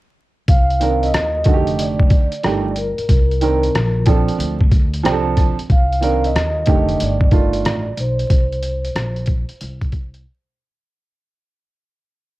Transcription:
0.48 C2 F5, kick, closed hi-hat
0.70 closed hi-hat
0.80 D#3 C4 D4 A#4, closed hi-hat
1.03 D#5, closed hi-hat
1.14 D#2, cross-stick, closed hi-hat
1.44 F1 D3 D#3 A3 F#4, kick, closed hi-hat
1.54 G4
1.67 closed hi-hat
1.79 D5, closed hi-hat
1.99 kick
2.10 kick, closed hi-hat
2.32 closed hi-hat
2.43 G1 D#3 A3 D4 G4, cross-stick, closed hi-hat
2.76 A#4, closed hi-hat
2.98 muted upright bass stroke, closed hi-hat
3.09 C2, kick, closed hi-hat
3.31 closed hi-hat
3.41 D#3 C4 D4 A#4, closed hi-hat
3.63 closed hi-hat
3.74 A#1, cross-stick, closed hi-hat
4.06 F3 C4 D4 A4, kick, closed hi-hat
4.28 muted upright bass stroke, closed hi-hat
4.38 D2, closed hi-hat
4.60 kick
4.71 kick, closed hi-hat
4.94 closed hi-hat
5.03 C2 F3 C4 D4 G4, cross-stick, closed hi-hat
5.12 A4
5.37 kick, cross-stick, closed hi-hat
5.59 muted upright bass stroke, closed hi-hat
5.70 C2 F5, kick, closed hi-hat
5.92 closed hi-hat
6.01 D#3 C4 D4 A#4, closed hi-hat
6.24 D#5, closed hi-hat
6.35 D#2, cross-stick, closed hi-hat
6.66 F1 D3 D#3 A3 G4, kick, closed hi-hat
6.89 closed hi-hat
7.00 G1 D5, closed hi-hat
7.21 kick
7.31 D#3 A3 D4 F4, kick, closed hi-hat
7.53 closed hi-hat
7.65 A1, cross-stick, closed hi-hat
7.97 B1 C5, closed hi-hat
8.19 closed hi-hat
8.30 C2, kick, closed hi-hat
8.53 closed hi-hat
8.63 closed hi-hat
8.85 closed hi-hat
8.95 A#1, cross-stick, closed hi-hat
9.16 closed hi-hat
9.26 kick, closed hi-hat
9.49 muted upright bass stroke, closed hi-hat
9.61 C2, closed hi-hat
9.81 kick, closed hi-hat
9.92 kick, closed hi-hat
10.14 closed hi-hat

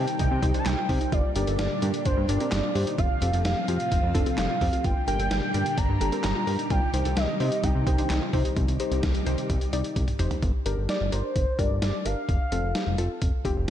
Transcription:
Already playing: C3 D#3 G3 D#4 G4 C5 G5
0.08 closed hi-hat
0.19 C2 D#4 G5, kick, closed hi-hat
0.31 C3
0.43 C2 D#4 G4 C5, kick, closed hi-hat
0.54 D4 D#4 G4 C5, closed hi-hat
0.59 A5
0.66 C2 D#4 G5, snare, clap, closed hi-hat
0.78 F4
0.89 C3 D#4 G4 C5, kick, open hi-hat
1.01 D#4, closed hi-hat
1.12 G1 A#2 D3 D4 F4 G4 D5, kick, closed hi-hat
1.36 G1 D4 G4 A#4 D5, closed hi-hat
1.47 G1 A4, closed hi-hat
1.59 G1, snare, closed hi-hat
1.82 G2 D4 G4 A#4, closed hi-hat
1.94 closed hi-hat
2.05 G1 D4 C5, kick, closed hi-hat
2.17 G2
2.29 G1 D4 G4 A#4 D5, closed hi-hat
2.40 C4 D4 G4 A#4, closed hi-hat
2.52 G1 D4, snare, clap, closed hi-hat
2.64 F4
2.75 G2 D4 G4 C5, open hi-hat
2.87 D#4, closed hi-hat
2.98 F1 A2 C3 F3 C4 F4 F5, kick, closed hi-hat
3.22 F1 C4 F4 G4 A4, closed hi-hat
3.33 F1 A4, closed hi-hat
3.45 F1 F5, snare, closed hi-hat
3.68 F2 C4 F4 G4, closed hi-hat
3.80 closed hi-hat
3.91 F1 C4, kick, closed hi-hat
4.03 F2
4.15 F1 C4 D4 F4 A4, kick, closed hi-hat
4.26 C4 F4 A4, closed hi-hat
4.38 F1 D4 F5, snare, clap, closed hi-hat
4.50 F4
4.61 F2 C4 F4 G4 A4, kick, open hi-hat
4.73 F4, closed hi-hat
4.84 G1 A#2 D3 G3 D4 F4 G4 G5, kick, closed hi-hat
5.08 G1 D4 G4 A#4 G5, closed hi-hat
5.19 G1 A4, closed hi-hat
5.31 G1, snare, closed hi-hat
5.54 G2 D4 G4 A#4, closed hi-hat
5.66 closed hi-hat
5.77 G1 D4 A#5, kick, closed hi-hat
5.89 G2
6.01 G1 D4 G4 A4, closed hi-hat
6.12 C4 D4 G4 A#4, closed hi-hat
6.24 G1 D4 A#5, snare, clap, closed hi-hat
6.36 F4
6.47 G2 D4 G4 A#4, open hi-hat
6.59 D#4, closed hi-hat
6.70 C2 C3 D#3 D#4 F4 G5, kick, closed hi-hat
6.94 C2 D#4 G4 C5, closed hi-hat
7.05 C2 A4, closed hi-hat
7.17 C2 D#5, snare, closed hi-hat
7.40 C3 D#4 G4 C5, open hi-hat
7.52 closed hi-hat
7.64 C2 D#4 G5, kick, closed hi-hat
7.75 C3
7.87 C2 D#4 G4 C5, kick, closed hi-hat
7.98 D4 D#4 G4 C5, closed hi-hat
8.10 C2 D#4, snare, clap, closed hi-hat
8.22 F4
8.33 C3 D#4 G4 C5, kick, open hi-hat
8.45 D#4, closed hi-hat
8.56 C2 C3 D#3 G3 D#4 G4, kick, closed hi-hat
8.68 C2, closed hi-hat
8.80 D#4 G4 C5, closed hi-hat
8.91 C2, closed hi-hat
9.03 C2, kick, snare, closed hi-hat
9.15 closed hi-hat
9.26 C2 D#4 G4 C5, closed hi-hat
9.38 closed hi-hat
9.50 C2, kick, closed hi-hat
9.61 closed hi-hat
9.73 C2 D#4 G4 D5, closed hi-hat
9.84 closed hi-hat
9.96 C2, kick, closed hi-hat, high tom
10.08 closed hi-hat, mid tom
10.19 F1 D#4 G4 C5, closed hi-hat, mid tom
10.31 closed hi-hat, floor tom
10.42 G1, kick, closed hi-hat
10.66 G1 D4 G4 A#4, closed hi-hat
10.78 G1
10.89 D5, snare, closed hi-hat
11.01 G1
11.12 G1 D4 G4 A#4 C5, closed hi-hat
11.36 G1, kick, closed hi-hat
11.59 G1 D4 G4 A#4 D5, kick, closed hi-hat
11.71 G1
11.82 G1 D5, snare, closed hi-hat
12.05 G1 D4 G4 A#4 F5, closed hi-hat
12.29 F1, kick, closed hi-hat
12.52 F1 C4 F4 A4, closed hi-hat
12.64 F1
12.75 snare, closed hi-hat
12.87 F1
12.98 F1 C4 F4 A4, closed hi-hat
13.22 F1, kick, closed hi-hat
13.45 F1 C4 F4 G4, kick, closed hi-hat
13.57 F1

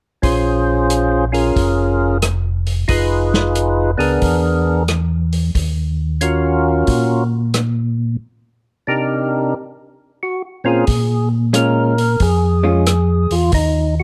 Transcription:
0.22 A#1 C#4 F4 G#4 C5, kick, open hi-hat
0.90 closed hi-hat
1.32 C#4 F4 G#4 A#4, open hi-hat
1.56 F1, kick, open hi-hat
2.22 cross-stick, closed hi-hat
2.67 open hi-hat
2.88 F1 D#4 F4 G#4 B4, kick, open hi-hat
3.34 snare
3.55 closed hi-hat
3.98 C#2 B3 D4 G#4 A#4, open hi-hat
4.22 E2, kick, open hi-hat
4.88 cross-stick, closed hi-hat
5.33 open hi-hat
5.55 D#2, kick, open hi-hat
6.21 C#4 F4 F#4 A#4, closed hi-hat
6.87 A#2, kick, open hi-hat
7.54 cross-stick, closed hi-hat
8.87 C3 D4 D#4 G4 A#4
10.23 F#4
10.64 A#2 C4 C#4 F4 G#4 A#4
10.87 A#2, kick, open hi-hat
11.53 G#3 C#4 F4 A#4, closed hi-hat
11.98 open hi-hat
12.20 F2 G#4, kick, open hi-hat
12.63 G#3 C#4 F4
12.86 cross-stick, closed hi-hat
13.30 E2 F4, open hi-hat
13.52 D#2 D#4, kick, open hi-hat
14.00 F#4

